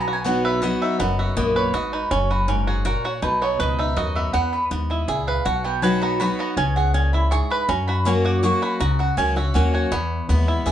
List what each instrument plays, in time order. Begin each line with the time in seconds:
Already playing: upright bass B1, steel-string acoustic guitar B2, five-string banjo B3
0.01 mandolin A#5
0.08 five-string banjo F#4
0.13 mandolin G#5
0.24 steel-string acoustic guitar F#3 B3 D#4 F#4, five-string banjo B3, mandolin F#5
0.45 five-string banjo B4, mandolin E5
0.62 steel-string acoustic guitar F#3 B3 D#4 F#4, five-string banjo F#4, mandolin D#5
0.82 five-string banjo D#4, mandolin E5
0.99 upright bass F#1, steel-string acoustic guitar F#2, five-string banjo B3, mandolin F#5
1.19 five-string banjo F#4, mandolin E5
1.36 upright bass A#1, steel-string acoustic guitar A#3, five-string banjo B3, mandolin D#5
1.56 five-string banjo B4, mandolin C#5
1.74 upright bass G#1, steel-string acoustic guitar G#2, five-string banjo F#4, mandolin D#5
1.93 five-string banjo D#4, mandolin B4
2.11 upright bass F#1, steel-string acoustic guitar F#2, five-string banjo C#4, mandolin C#5
2.30 five-string banjo F#4, mandolin B4
2.48 steel-string acoustic guitar G#2, five-string banjo C#4, mandolin A#4
2.67 five-string banjo F#4, mandolin G#4
2.85 steel-string acoustic guitar A#2, five-string banjo F#4, mandolin A#4
3.05 five-string banjo F#4, mandolin C#5
3.22 upright bass B1, steel-string acoustic guitar B2, five-string banjo D#4, mandolin B4
3.42 five-string banjo B3, mandolin C#5
3.59 upright bass C#2, steel-string acoustic guitar G#2, five-string banjo B4, mandolin D#5
3.79 five-string banjo D#4, mandolin E5
3.97 upright bass D#2, steel-string acoustic guitar F#2, five-string banjo F#4, mandolin D#5
4.15 five-string banjo B3, mandolin E5
4.33 steel-string acoustic guitar E2, upright bass E2, five-string banjo B3, mandolin F#5
4.53 mandolin B4
4.71 upright bass D#2, steel-string acoustic guitar G#2, five-string banjo B3
4.90 five-string banjo E4, mandolin D#5
5.08 upright bass C#2, steel-string acoustic guitar A#2, five-string banjo G#4, mandolin E5
5.27 five-string banjo B4, mandolin F5
5.45 upright bass B1, steel-string acoustic guitar B2, five-string banjo F#4, mandolin F#5
5.64 five-string banjo B3, mandolin G5
5.82 steel-string acoustic guitar F#3 B3 D#4 F#4, five-string banjo B4, mandolin G#5
6.02 five-string banjo B3, mandolin A#5
6.20 steel-string acoustic guitar F#3 B3 D#4 F#4, five-string banjo F#4, mandolin B5
6.39 five-string banjo B3, mandolin A#5
6.57 upright bass C#2, steel-string acoustic guitar C#3, five-string banjo C#4, mandolin G#5
6.76 five-string banjo G#4, mandolin F#5
6.94 steel-string acoustic guitar A#2, five-string banjo C#4, mandolin G#5
7.13 five-string banjo E4, mandolin B5
7.31 steel-string acoustic guitar G#2, five-string banjo G#4, mandolin C#6
7.50 five-string banjo B4, mandolin B5
7.69 upright bass F#2, steel-string acoustic guitar F#2, five-string banjo C#4, mandolin A#5
7.88 five-string banjo F#4, mandolin B5
8.05 steel-string acoustic guitar F#3 A#3 C#4 F#4, five-string banjo C#4, mandolin C#6
8.25 five-string banjo F#4, mandolin D6
8.43 steel-string acoustic guitar F#3 A#3 C#4 F#4, five-string banjo F#4, mandolin C#6
8.62 five-string banjo F#4, mandolin B5
8.80 upright bass C#2, steel-string acoustic guitar C#3, five-string banjo F#4, mandolin A#5
8.99 five-string banjo F#4, mandolin F#5
9.17 upright bass C#2, steel-string acoustic guitar F#3 A#3 C#4 F#4, five-string banjo C#4, mandolin G#5
9.36 steel-string acoustic guitar C#4 F#4, five-string banjo F#4, mandolin E5
9.54 upright bass D#2, steel-string acoustic guitar F#3 A#3 C#4 F#4, five-string banjo C#4, mandolin F#5
9.74 five-string banjo F#4, mandolin G#5
9.91 upright bass E2, steel-string acoustic guitar E2, five-string banjo B3
10.29 upright bass D#2, steel-string acoustic guitar G#3 B3 E4, five-string banjo B3
10.48 five-string banjo E4
10.66 upright bass E2, steel-string acoustic guitar E3 G#3 B3 E4, five-string banjo G#4, mandolin E5